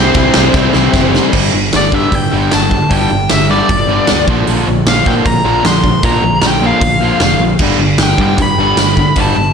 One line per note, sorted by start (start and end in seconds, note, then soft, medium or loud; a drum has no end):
0.00 0.53 C3 medium
0.00 0.54 E3 loud
0.00 0.55 G3 medium
0.00 0.55 C4 loud
0.00 0.55 E4 loud
0.00 1.11 C5 medium
0.14 0.28 C2 loud
0.14 kick loud
0.14 crash medium
0.34 0.48 C2 loud
0.34 snare loud
0.53 0.66 C2 medium
0.53 1.32 C3 medium
0.53 1.32 E3 medium
0.53 1.33 G3 loud
0.53 1.33 C4 medium
0.53 kick loud
0.53 snare medium
0.57 1.34 E4 medium
0.73 0.87 C2 loud
0.73 snare medium
0.93 1.18 F#1 loud
0.93 kick loud
0.93 snare medium
1.15 snare medium
1.33 1.49 G1 medium
1.33 1.52 G2 medium
1.33 1.52 D3 loud
1.33 1.52 G3 medium
1.33 kick loud
1.33 crash loud
1.54 1.68 G1 medium
1.54 1.72 G2 medium
1.54 1.72 D3 medium
1.73 1.88 G1 loud
1.73 1.91 G2 medium
1.73 1.91 D3 medium
1.73 1.94 D5 medium
1.73 snare loud
1.73 open hi-hat medium
1.92 2.07 G2 medium
1.92 2.11 G2 medium
1.92 2.11 D3 medium
1.92 2.12 G3 medium
1.92 2.15 E5 medium
1.92 kick loud
2.12 2.27 G2 medium
2.12 2.30 G2 medium
2.12 2.31 D3 medium
2.12 2.54 G5 loud
2.12 kick medium
2.12 open hi-hat medium
2.32 2.48 G1 loud
2.32 2.51 G2 loud
2.32 2.51 D3 loud
2.32 2.51 G3 loud
2.52 2.83 G1 loud
2.52 2.70 G2 medium
2.52 2.70 D3 medium
2.52 2.93 A5 medium
2.52 snare loud
2.52 open hi-hat medium
2.69 2.88 G2 medium
2.69 2.88 D3 medium
2.69 kick medium
2.74 2.90 G2 medium
2.74 2.90 D3 medium
2.91 3.05 G1 medium
2.91 3.09 G2 medium
2.91 3.10 D3 medium
2.91 3.10 G3 medium
2.91 3.30 G5 loud
2.91 kick loud
2.91 open hi-hat medium
3.11 3.26 G1 loud
3.11 3.28 G2 medium
3.11 3.29 D3 medium
3.30 3.61 G1 medium
3.30 3.48 G2 medium
3.30 3.48 D3 medium
3.30 3.50 E5 medium
3.30 snare loud
3.30 open hi-hat medium
3.50 3.68 G2 medium
3.50 3.69 D3 medium
3.50 3.69 G3 medium
3.50 4.25 D5 medium
3.69 3.99 G1 medium
3.69 3.87 G2 medium
3.69 3.88 D3 medium
3.69 kick loud
3.69 open hi-hat medium
3.89 4.07 G2 loud
3.89 4.08 D3 medium
3.89 4.08 G3 loud
4.07 4.26 G2 medium
4.07 4.27 D3 medium
4.07 snare loud
4.07 open hi-hat medium
4.11 4.25 D2 loud
4.27 4.42 A#1 medium
4.27 4.46 A#2 medium
4.27 4.47 D3 medium
4.27 4.47 F3 loud
4.27 4.47 A#3 loud
4.27 kick medium
4.47 4.63 A#1 medium
4.47 4.66 A#2 loud
4.47 4.66 D3 medium
4.47 4.67 F3 loud
4.47 4.66 A#3 medium
4.47 open hi-hat medium
4.67 4.82 A#1 medium
4.67 4.85 A#2 medium
4.67 4.85 D3 medium
4.67 4.85 F3 medium
4.86 5.01 A#1 loud
4.86 5.04 A#2 medium
4.86 5.05 D3 medium
4.86 5.05 F3 medium
4.86 5.07 F5 medium
4.86 snare loud
4.86 open hi-hat medium
5.06 5.25 A#2 medium
5.06 5.21 A#2 medium
5.06 5.25 D3 medium
5.06 5.25 F3 loud
5.06 5.25 A#3 loud
5.06 5.13 G5 loud
5.06 kick medium
5.26 5.40 A#2 medium
5.26 5.43 A#2 medium
5.26 5.44 D3 medium
5.26 5.43 F3 medium
5.26 5.62 A#5 loud
5.26 kick loud
5.26 open hi-hat medium
5.45 5.60 A#1 medium
5.45 5.64 A#2 loud
5.45 5.64 D3 loud
5.45 5.64 F3 loud
5.45 5.64 A#3 medium
5.64 5.94 A#1 medium
5.64 5.83 A#2 medium
5.64 5.83 D3 medium
5.64 5.82 F3 medium
5.64 6.04 C6 medium
5.64 snare loud
5.64 open hi-hat medium
5.84 6.02 A#2 medium
5.84 6.02 D3 medium
5.84 6.02 F3 medium
5.84 kick medium
6.03 6.18 A#1 medium
6.03 6.22 A#2 medium
6.03 6.23 D3 medium
6.03 6.23 F3 medium
6.03 6.23 A#3 medium
6.03 6.45 A#5 medium
6.03 kick loud
6.03 open hi-hat medium
6.23 6.38 A#1 medium
6.23 6.41 A#2 medium
6.23 6.42 D3 medium
6.23 6.41 F3 medium
6.42 6.72 A#1 loud
6.42 6.61 A#2 medium
6.42 6.61 D3 medium
6.42 6.61 F3 medium
6.42 snare loud
6.42 open hi-hat medium
6.47 6.66 G5 loud
6.62 6.81 A#2 medium
6.62 6.81 D3 medium
6.62 6.82 F3 loud
6.62 6.81 A#3 loud
6.66 7.43 F5 medium
6.81 7.11 A#1 medium
6.81 7.00 A#2 medium
6.81 7.01 D3 medium
6.81 6.99 F3 medium
6.81 kick loud
6.81 open hi-hat medium
7.01 7.21 A#2 medium
7.01 7.21 D3 medium
7.01 7.21 F3 loud
7.01 7.20 A#3 loud
7.20 7.36 F1 medium
7.20 7.39 A#2 medium
7.20 7.39 D3 medium
7.20 7.39 F3 medium
7.20 snare loud
7.20 open hi-hat medium
7.38 7.54 A#1 medium
7.38 7.59 A#2 medium
7.38 7.59 D3 medium
7.38 7.58 F3 medium
7.59 7.75 G1 medium
7.59 7.78 G2 medium
7.59 7.79 D3 medium
7.59 7.80 G3 loud
7.59 kick medium
7.59 crash medium
7.78 7.93 G1 medium
7.78 7.97 G2 medium
7.78 7.98 D3 medium
7.98 8.13 G1 loud
7.98 8.18 G2 medium
7.98 snare loud
7.98 open hi-hat medium
8.02 8.18 D3 medium
8.02 8.21 G5 medium
8.18 8.33 G2 medium
8.18 8.38 G2 medium
8.18 8.38 D3 medium
8.18 8.39 G3 medium
8.18 kick medium
8.22 8.41 G5 loud
8.38 8.53 G2 medium
8.38 8.57 G2 medium
8.38 8.57 D3 medium
8.38 9.21 B5 loud
8.38 kick loud
8.38 open hi-hat medium
8.57 8.72 G1 loud
8.57 8.76 G2 loud
8.57 8.77 D3 loud
8.57 8.78 G3 loud
8.77 9.06 G1 medium
8.77 8.95 G2 medium
8.77 8.95 D3 medium
8.77 snare loud
8.77 open hi-hat medium
8.97 9.16 G2 medium
8.97 9.16 D3 medium
8.97 kick medium
9.16 9.31 G1 medium
9.16 9.35 G2 medium
9.16 9.35 D3 medium
9.16 9.36 G3 loud
9.16 kick loud
9.16 open hi-hat medium
9.20 9.53 A5 loud
9.36 9.51 G1 medium
9.36 9.53 G2 medium
9.36 9.53 D3 loud